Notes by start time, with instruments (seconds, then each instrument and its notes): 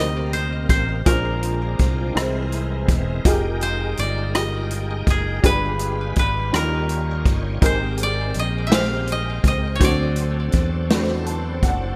Already playing: fingered electric bass D2, tonewheel organ C3 A#3 C4 A#4, upright piano C3 C4 D4 D#4 G4 A#4 C5 D#5, koto A#4 C5 D#5
0.33 koto C5, closed hi-hat
0.69 fingered electric bass A1, koto C5, kick, closed hi-hat
1.05 fingered electric bass A#1, upright piano A#2 C#4 F4 G#4 A#4 C5, tonewheel organ G#3 C4 D4 A#4, koto A#4, kick, closed hi-hat
1.12 upright piano D4
1.43 closed hi-hat
1.79 fingered electric bass C2, kick, closed hi-hat
2.14 fingered electric bass C2, upright piano C3 D#4 E4 G#4 A#4 C5, tonewheel organ E3 G#3 C4 A4, cross-stick, closed hi-hat
2.22 tonewheel organ A#4
2.52 closed hi-hat
2.88 fingered electric bass E1, kick, closed hi-hat
3.25 fingered electric bass F1, tonewheel organ G#3 D#4 G#4 G5, upright piano D#4 F4 G4 G#4 A#4, kick, closed hi-hat
3.31 tonewheel organ A#4
3.61 koto C5, closed hi-hat
3.97 fingered electric bass G1, koto D5, closed hi-hat
4.33 upright piano D#4 F4 G4 G#4 A#4, koto D#5, cross-stick, closed hi-hat
4.71 closed hi-hat
5.07 fingered electric bass F#1, koto G#4, kick, closed hi-hat
5.42 fingered electric bass G1, upright piano G2 D4 F4 G4 G#4 B4, tonewheel organ G3 G#3 F4 A#4, koto B4, kick, closed hi-hat
5.50 tonewheel organ B4
5.79 closed hi-hat
6.16 fingered electric bass G#1, koto B4, kick, closed hi-hat
6.51 fingered electric bass D#2, upright piano D#3 C#4 D#4 F4 G4 A#4, tonewheel organ G3 D#4 F4 C#5, cross-stick, closed hi-hat
6.56 koto A#4
6.89 closed hi-hat
7.25 fingered electric bass G1, kick, closed hi-hat
7.61 fingered electric bass G#1, upright piano G#2 C4 D#4 G4 G#4 A#4, tonewheel organ G#3 C4 A#4 G5, kick, closed hi-hat
7.66 koto C5
7.97 closed hi-hat
8.03 koto D5
8.34 fingered electric bass A#1, closed hi-hat
8.39 koto D#5
8.67 upright piano C4 D#4, koto E5
8.71 upright piano G4 G#4 C5, koto F5, snare, closed hi-hat
9.07 closed hi-hat
9.12 koto D#5
9.44 fingered electric bass C#2, kick, closed hi-hat
9.48 koto D#5
9.75 upright piano C4, koto C#5
9.80 fingered electric bass D2, upright piano D3 D4 F#4 A4 C5, tonewheel organ F#3 C4 D4 A4, kick, closed hi-hat
9.85 koto D5
10.16 closed hi-hat
10.52 fingered electric bass E2, kick, closed hi-hat
10.90 upright piano C4 D4 F#4 A4 B4, snare, closed hi-hat
10.98 upright piano C5
11.26 upright piano A5, closed hi-hat
11.62 fingered electric bass F#1, upright piano F#5, kick, closed hi-hat